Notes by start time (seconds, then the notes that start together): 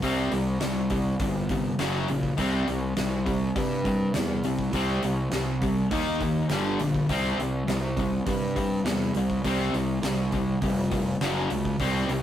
0.02 C2 C3 G3 C4, kick, open hi-hat
0.32 C2 C3 G3, open hi-hat
0.60 C2 C3 G3, snare, open hi-hat
0.90 C3 G3, kick, open hi-hat
1.20 G1 C3 G3, kick, open hi-hat
1.49 C3 G3, kick, open hi-hat
1.79 F#1 F#2 C#3 F#3, snare, open hi-hat
2.08 A#1 F#2 C#3, open hi-hat
2.23 kick
2.37 C2 C3 G3 C4, kick, open hi-hat
2.68 C2 C3 G3, open hi-hat
2.97 C2 C3 G3, snare, open hi-hat
3.25 C3 G3, kick, open hi-hat
3.56 G2 C3 G3, kick, open hi-hat
3.85 C3 G3, kick, open hi-hat
4.14 E2 C3 G3, snare, open hi-hat
4.44 C2 C3 G3, open hi-hat
4.59 kick
4.73 C2 C3 G3 C4, kick, open hi-hat
5.03 C2 C3 G3, open hi-hat
5.32 C2 C3 G3, snare, open hi-hat
5.62 C3 G3, kick, open hi-hat
5.91 D#2 D#3 A#3 D#4, kick, open hi-hat
6.21 D#3 A#3, kick, open hi-hat
6.50 G1 G2 D3 G3, snare, open hi-hat
6.79 A#1 G2 D3, open hi-hat
6.94 kick
7.09 C2 C3 G3 C4, kick, open hi-hat
7.38 C2 C3 G3, open hi-hat
7.67 C2 C3 G3, snare, open hi-hat
7.97 C3 G3, kick, open hi-hat
8.26 G2 C3 G3, kick, open hi-hat
8.56 C3 G3, kick, open hi-hat
8.85 E2 C3 G3, snare, open hi-hat
9.15 C2 C3 G3, open hi-hat
9.30 kick
9.44 C2 C3 G3 C4, kick, open hi-hat
9.73 C2 C3 G3, open hi-hat
10.03 C2 C3 G3, snare, open hi-hat
10.32 C3 G3, kick, open hi-hat
10.62 F1 C3 G3, kick, open hi-hat
10.91 C3 G3, kick, open hi-hat
11.21 F#1 F#2 C#3 F#3, snare, open hi-hat
11.50 C#2 F#2 C#3, open hi-hat
11.65 kick
11.80 C2 C3 G3 C4, kick, open hi-hat
12.08 C2 C3 G3, open hi-hat